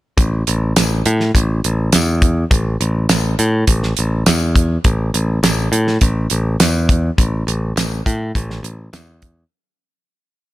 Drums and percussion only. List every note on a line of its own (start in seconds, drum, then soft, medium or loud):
0.18 kick loud
0.18 closed hi-hat medium
0.47 closed hi-hat medium
0.76 snare loud
0.76 closed hi-hat loud
0.76 tambourine loud
1.06 closed hi-hat medium
1.20 snare soft
1.35 kick medium
1.35 closed hi-hat medium
1.64 closed hi-hat medium
1.92 snare loud
1.92 closed hi-hat medium
1.92 tambourine loud
2.22 kick medium
2.22 closed hi-hat medium
2.51 kick loud
2.51 closed hi-hat medium
2.81 closed hi-hat medium
3.09 snare loud
3.09 closed hi-hat medium
3.09 tambourine loud
3.39 closed hi-hat medium
3.67 kick medium
3.67 closed hi-hat medium
3.83 snare soft
3.97 closed hi-hat medium
4.26 snare loud
4.26 closed hi-hat medium
4.26 tambourine loud
4.56 kick medium
4.56 closed hi-hat medium
4.84 kick loud
4.84 closed hi-hat medium
5.14 closed hi-hat medium
5.44 snare loud
5.44 closed hi-hat loud
5.44 tambourine loud
5.73 closed hi-hat medium
5.87 snare soft
6.01 kick medium
6.01 closed hi-hat medium
6.30 closed hi-hat medium
6.60 snare loud
6.60 closed hi-hat loud
6.60 tambourine loud
6.89 kick medium
6.89 closed hi-hat medium
7.18 kick loud
7.18 closed hi-hat medium
7.48 closed hi-hat medium
7.77 snare loud
7.77 closed hi-hat medium
7.77 tambourine loud
8.06 kick medium
8.06 closed hi-hat medium
8.35 kick medium
8.35 closed hi-hat medium
8.50 snare soft
8.64 closed hi-hat medium
8.93 snare loud
8.93 closed hi-hat medium
8.93 tambourine loud
9.22 kick medium
9.22 closed hi-hat medium